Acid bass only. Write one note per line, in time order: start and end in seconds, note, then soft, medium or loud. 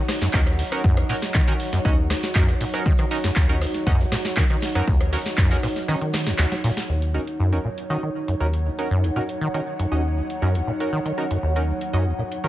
0.21 0.28 F#2 medium
0.34 0.60 D#2 medium
0.59 0.63 C#2 loud
0.84 0.99 F#2 loud
0.97 1.04 D#2 loud
1.09 1.14 A#2 medium
1.35 1.42 D#3 loud
1.48 1.54 D#3 medium
1.73 1.79 F#2 medium
1.85 2.12 D#2 medium
2.10 2.14 C#2 loud
2.35 2.50 F#2 loud
2.48 2.55 D#2 loud
2.61 2.65 A#2 medium
2.86 2.93 D#3 loud
2.99 3.06 D#3 medium
3.24 3.31 F#2 medium
3.36 3.63 D#2 medium
3.61 3.66 C#2 loud
3.87 4.01 F#2 loud
4.00 4.06 D#2 loud
4.12 4.16 A#2 medium
4.37 4.44 D#3 loud
4.50 4.57 D#3 medium
4.75 4.82 F#2 medium
4.88 5.14 D#2 medium
5.13 5.17 C#2 loud
5.38 5.52 F#2 loud
5.51 5.58 D#2 loud
5.63 5.67 A#2 medium
5.88 5.95 D#3 loud
6.01 6.28 D#3 medium
6.27 6.33 D#2 medium
6.39 6.46 D#2 loud
6.52 6.56 F#3 medium
6.64 6.71 A#2 loud
6.89 7.16 D#2 medium
7.14 7.19 C#2 loud
7.40 7.54 F#2 loud
7.53 7.59 D#2 loud
7.65 7.69 A#2 medium
7.90 7.97 D#3 medium
8.03 8.10 D#3 medium
8.28 8.35 F#2 medium
8.40 8.67 D#2 medium
8.66 8.70 C#2 loud
8.91 9.05 F#2 loud
9.04 9.11 D#2 loud
9.16 9.20 A#2 medium
9.41 9.48 D#3 loud
9.54 9.61 D#3 medium
9.79 9.86 F#2 medium
9.92 10.18 D#2 medium
10.17 10.21 C#2 loud
10.42 10.57 F#2 loud
10.55 10.62 D#2 loud
10.67 10.72 A#2 medium
10.93 11.00 D#3 loud
11.06 11.12 D#3 medium
11.31 11.37 F#2 medium
11.43 11.70 D#2 medium
11.68 11.72 C#2 loud
11.93 12.08 F#2 loud
12.06 12.13 D#2 loud
12.19 12.23 A#2 medium
12.44 12.48 D#3 loud